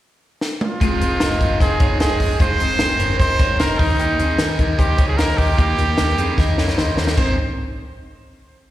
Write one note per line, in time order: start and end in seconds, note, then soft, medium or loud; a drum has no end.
0.41 snare medium
0.61 1.57 F4 medium
0.61 mid tom medium
0.81 0.97 F1 loud
0.81 1.01 F2 medium
0.81 1.01 C3 medium
0.81 1.01 D#3 medium
0.81 1.00 G#3 medium
0.81 1.02 G#3 medium
0.81 0.99 C4 medium
0.81 1.01 F4 medium
0.81 kick medium
0.81 closed hi-hat medium
1.00 1.17 F1 medium
1.00 1.20 D#3 soft
1.00 1.21 G#3 medium
1.00 1.20 C4 medium
1.00 1.21 C4 medium
1.00 1.21 G#4 medium
1.00 closed hi-hat medium
1.20 1.37 F1 loud
1.20 1.40 C3 medium
1.20 1.41 D#3 medium
1.20 1.40 G#3 medium
1.20 1.39 C4 medium
1.20 1.59 D#4 soft
1.20 1.58 A#4 medium
1.20 snare loud
1.20 closed hi-hat loud
1.40 1.57 G1 medium
1.40 1.60 D#3 soft
1.40 1.61 G#3 medium
1.40 1.60 C4 medium
1.40 kick medium
1.40 closed hi-hat medium
1.60 1.77 F1 medium
1.60 1.80 F2 medium
1.60 1.81 C3 medium
1.60 1.81 D#3 medium
1.60 1.80 G#3 medium
1.60 1.79 C4 medium
1.60 1.81 D#4 medium
1.60 1.98 G#4 medium
1.60 1.80 C5 medium
1.60 kick medium
1.60 snare soft
1.60 closed hi-hat medium
1.80 1.97 G1 medium
1.80 2.00 D#3 soft
1.80 2.01 G#3 soft
1.80 2.00 C4 soft
1.80 2.01 F4 medium
1.80 2.00 C#5 medium
1.80 kick loud
1.80 closed hi-hat medium
2.00 2.17 F1 medium
2.00 2.20 C3 medium
2.00 2.21 D#3 medium
2.00 2.20 G#3 medium
2.00 2.18 C4 medium
2.00 2.38 D#4 medium
2.00 2.37 G#4 medium
2.00 2.38 C5 medium
2.00 snare loud
2.00 closed hi-hat medium
2.19 2.36 F1 medium
2.19 2.40 D#3 soft
2.19 2.40 G#3 soft
2.19 2.40 C4 medium
2.19 kick medium
2.19 open hi-hat medium
2.40 2.56 F1 loud
2.40 2.60 F2 medium
2.40 2.60 C3 medium
2.40 2.60 D#3 medium
2.40 2.60 G#3 medium
2.40 2.58 C4 medium
2.40 2.59 F4 loud
2.40 3.16 C5 loud
2.40 kick medium
2.40 closed hi-hat medium
2.59 2.77 F1 medium
2.59 2.79 D#3 soft
2.59 2.80 G#3 medium
2.59 2.80 C4 medium
2.59 2.79 C4 medium
2.59 2.78 G#4 medium
2.59 closed hi-hat medium
2.79 3.00 F1 medium
2.79 2.99 C3 medium
2.79 3.00 D#3 medium
2.79 3.00 G#3 medium
2.79 2.99 C4 medium
2.79 2.98 C4 medium
2.79 2.99 G#4 medium
2.79 snare loud
2.79 closed hi-hat loud
2.99 3.16 G1 medium
2.99 3.19 D#3 medium
2.99 3.20 G#3 medium
2.99 3.20 C4 medium
2.99 3.20 C#4 medium
2.99 3.19 A#4 medium
2.99 closed hi-hat medium
3.19 3.40 F1 medium
3.19 3.39 F2 medium
3.19 3.40 C3 medium
3.19 3.40 D#3 medium
3.19 3.39 G#3 medium
3.19 3.37 C4 medium
3.19 3.40 D#4 medium
3.19 3.57 C5 loud
3.19 3.39 C5 medium
3.19 kick medium
3.19 closed hi-hat medium
3.39 3.56 G1 medium
3.39 3.58 D#3 soft
3.39 3.59 G#3 medium
3.39 3.59 C4 medium
3.39 3.60 F4 medium
3.39 3.58 C#5 medium
3.39 kick medium
3.39 closed hi-hat medium
3.59 3.76 F1 medium
3.59 3.79 C3 medium
3.59 3.79 D#3 medium
3.59 3.79 G#3 medium
3.59 3.78 C4 medium
3.59 3.79 D#4 medium
3.59 3.81 A#4 medium
3.59 3.79 C5 medium
3.59 snare loud
3.59 closed hi-hat medium
3.78 4.12 D#2 medium
3.78 3.98 G3 soft
3.78 3.99 A#3 soft
3.78 3.99 D#4 soft
3.78 4.59 D#4 medium
3.78 4.00 D#4 medium
3.78 3.99 A#4 medium
3.78 kick loud
3.78 open hi-hat medium
3.99 4.19 D#3 medium
3.99 4.19 G3 medium
3.99 4.18 A#3 medium
3.99 4.20 A#3 medium
3.99 4.17 D#4 medium
3.99 4.19 G4 loud
3.99 closed hi-hat medium
4.18 4.36 D#2 loud
4.18 4.38 G3 soft
4.18 4.38 A#3 medium
4.18 4.39 C4 medium
4.18 4.38 D#4 medium
4.18 4.39 G#4 medium
4.18 closed hi-hat medium
4.38 4.55 D#2 loud
4.38 4.58 D#3 medium
4.38 4.59 G3 medium
4.38 4.58 A#3 medium
4.38 4.77 D#4 medium
4.38 4.57 D#4 medium
4.38 4.77 A#4 medium
4.38 snare loud
4.38 closed hi-hat loud
4.58 4.75 D#2 medium
4.58 4.78 G3 medium
4.58 4.78 A#3 medium
4.58 4.78 D#4 medium
4.58 kick medium
4.58 closed hi-hat medium
4.78 4.95 D#2 loud
4.78 4.98 D#3 medium
4.78 4.99 G3 medium
4.78 4.98 A#3 medium
4.78 4.99 D#4 medium
4.78 4.97 D#4 medium
4.78 5.06 G4 medium
4.78 4.98 C5 medium
4.78 kick medium
4.78 closed hi-hat medium
4.98 5.15 C#2 medium
4.98 5.18 G3 soft
4.98 5.19 A#3 soft
4.98 5.18 D#4 medium
4.98 5.19 F4 medium
4.98 5.18 C#5 medium
4.98 kick loud
4.98 closed hi-hat medium
5.08 5.19 G#4 medium
5.18 5.35 D#2 medium
5.18 5.38 D#3 medium
5.18 5.39 G3 medium
5.18 5.38 A#3 medium
5.18 5.56 D#4 medium
5.18 5.37 D#4 medium
5.18 5.39 A#4 medium
5.18 5.56 C5 medium
5.18 snare loud
5.18 closed hi-hat medium
5.38 5.55 D#2 medium
5.38 5.57 G3 soft
5.38 5.58 A#3 soft
5.38 5.58 D#4 medium
5.38 6.77 G4 loud
5.38 kick medium
5.38 open hi-hat medium
5.57 5.75 D#2 loud
5.57 5.78 D#3 medium
5.57 5.78 G3 medium
5.57 5.78 A#3 medium
5.57 5.76 D#4 medium
5.57 5.78 F4 medium
5.57 kick medium
5.57 closed hi-hat medium
5.77 5.95 D#2 medium
5.77 5.97 G3 soft
5.77 5.98 A#3 medium
5.77 5.98 D#4 medium
5.77 5.97 G4 medium
5.77 closed hi-hat medium
5.97 6.14 D#2 loud
5.97 6.18 D#3 medium
5.97 6.18 G3 medium
5.97 6.18 A#3 medium
5.97 6.16 D#4 medium
5.97 6.17 G4 medium
5.97 snare loud
5.97 closed hi-hat loud
6.18 6.34 F2 medium
6.18 6.37 G3 medium
6.18 6.38 A#3 medium
6.18 6.38 C4 medium
6.18 6.38 D#4 medium
6.18 6.38 G#4 medium
6.18 closed hi-hat medium
6.38 6.54 D#2 medium
6.38 6.58 D#3 medium
6.38 6.58 G3 medium
6.38 6.58 A#3 medium
6.38 6.58 D#4 medium
6.38 6.56 D#4 loud
6.38 6.57 A#4 medium
6.38 kick medium
6.38 snare medium
6.57 6.74 F2 medium
6.57 6.77 G3 soft
6.57 6.78 A#3 medium
6.57 6.77 D#4 medium
6.57 6.78 F4 medium
6.57 6.77 C#5 medium
6.57 snare medium
6.68 snare medium
6.77 6.94 D#2 medium
6.77 6.97 D#3 medium
6.77 6.98 G3 medium
6.77 6.97 A#3 medium
6.77 6.98 D#4 medium
6.77 6.95 D#4 medium
6.77 6.97 C5 medium
6.77 snare medium
6.97 7.14 D#2 medium
6.97 7.18 G3 medium
6.97 7.17 A#3 medium
6.97 7.17 C#4 medium
6.97 7.17 D#4 medium
6.97 7.17 A#4 medium
6.97 snare medium
7.07 snare medium
7.17 7.36 G#1 medium
7.17 7.33 G#3 medium
7.17 7.34 A#3 medium
7.17 7.36 C4 medium
7.17 7.34 D#4 medium
7.17 7.34 G#4 medium
7.17 7.36 C5 medium
7.17 7.34 C5 medium
7.17 kick loud
7.17 crash medium